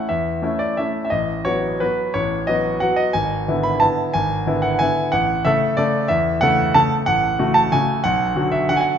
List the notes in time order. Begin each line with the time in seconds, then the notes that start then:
0.09 E2 E5
0.42 A3 C#4 E4
0.59 D5
0.77 A3 C#4 E4 E5
1.05 E5
1.10 A1 D#5
1.45 F#3 B3 F#4 C#5
1.80 F#3 B3 F#4 B4
2.14 A1 C#5
2.47 F#3 B3 F#4 D#5
2.80 F#3 B3 F#4 F#5
2.96 D#5
3.13 G#1 G#5
3.48 D3 B3 E4
3.63 B5
3.80 D3 B3 E4 A5
4.14 G#1 G#5
4.47 D3 B3 E4
4.62 F#5
4.79 D3 B3 E4 G#5
5.12 A1 F#5
5.45 C#3 A3 A4 E5
5.77 C#3 A3 A4 D5
6.08 E2 E5
6.41 C#3 A3 A4 F#5
6.74 C#3 A3 A4 A5
7.06 A1 F#5
7.39 C#3 A3 F#4
7.54 A5
7.72 C#3 A3 F#4 G#5
8.04 B1 F#5
8.36 D3 F#3 F#4
8.52 E5
8.69 D3 F#3 F#4 F#5
8.76 G#5
8.81 F#5